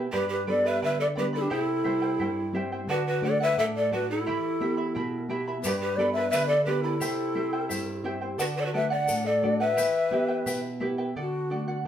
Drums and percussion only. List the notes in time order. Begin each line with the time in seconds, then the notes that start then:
5.64 shaker
6.33 shaker
7.01 shaker
7.71 shaker
8.39 shaker
9.08 shaker
9.78 shaker
10.47 shaker